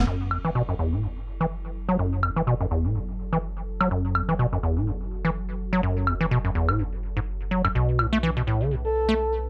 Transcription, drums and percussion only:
0.31 high woodblock medium
2.23 high woodblock medium
3.81 high woodblock medium
4.15 high woodblock medium
6.07 high woodblock medium
6.69 high woodblock medium
7.65 high woodblock medium
7.99 high woodblock medium

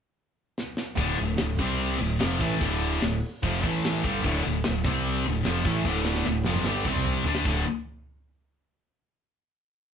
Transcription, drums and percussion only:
0.58 snare medium
0.77 snare medium
0.97 kick loud
0.97 open hi-hat medium
1.38 snare loud
1.38 open hi-hat medium
1.59 kick loud
1.59 crash loud
2.20 snare loud
2.20 open hi-hat medium
2.41 kick loud
2.61 kick loud
2.61 open hi-hat medium
3.02 snare loud
3.02 open hi-hat medium
3.43 kick loud
3.43 open hi-hat medium
3.63 kick loud
3.85 snare loud
3.85 open hi-hat medium
4.04 kick loud
4.24 kick loud
4.24 crash medium
4.64 snare loud
4.64 open hi-hat medium
4.85 kick loud
5.05 open hi-hat medium
5.45 snare loud
5.45 open hi-hat medium
5.65 kick loud
5.85 kick medium
6.05 snare medium
6.15 snare medium
6.24 snare medium
6.44 snare medium
6.55 mid tom medium
6.65 snare medium
6.85 kick medium
6.95 mid tom medium
7.05 floor tom medium
7.24 floor tom loud
7.35 snare medium
7.44 kick loud
7.44 crash medium

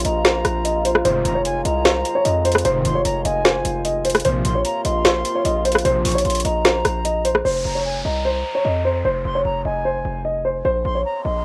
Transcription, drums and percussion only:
0.05 closed hi-hat medium
0.25 snare loud
0.25 closed hi-hat medium
0.45 cross-stick medium
0.45 closed hi-hat medium
0.65 closed hi-hat medium
0.85 closed hi-hat medium
0.95 cross-stick medium
1.05 closed hi-hat medium
1.25 closed hi-hat medium
1.45 closed hi-hat medium
1.65 closed hi-hat medium
1.85 snare loud
1.85 closed hi-hat medium
2.05 closed hi-hat medium
2.25 closed hi-hat medium
2.45 closed hi-hat medium
2.52 cross-stick medium
2.52 closed hi-hat medium
2.58 closed hi-hat medium
2.65 closed hi-hat medium
2.85 closed hi-hat medium
3.05 closed hi-hat medium
3.25 closed hi-hat medium
3.45 snare loud
3.45 closed hi-hat medium
3.65 closed hi-hat medium
3.85 closed hi-hat medium
4.05 closed hi-hat medium
4.10 closed hi-hat medium
4.15 cross-stick medium
4.15 closed hi-hat medium
4.20 closed hi-hat medium
4.25 closed hi-hat medium
4.45 closed hi-hat medium
4.65 closed hi-hat medium
4.85 closed hi-hat medium
5.05 snare loud
5.05 closed hi-hat medium
5.25 closed hi-hat medium
5.45 closed hi-hat medium
5.65 closed hi-hat medium
5.72 cross-stick medium
5.72 closed hi-hat medium
5.78 closed hi-hat medium
5.85 closed hi-hat medium
6.05 closed hi-hat soft
6.05 open hi-hat medium
6.12 closed hi-hat medium
6.18 closed hi-hat medium
6.25 closed hi-hat medium
6.30 closed hi-hat medium
6.35 closed hi-hat medium
6.40 closed hi-hat medium
6.45 closed hi-hat medium
6.65 snare loud
6.65 closed hi-hat medium
6.85 cross-stick medium
6.85 closed hi-hat medium
7.05 closed hi-hat medium
7.25 closed hi-hat medium
7.35 cross-stick medium

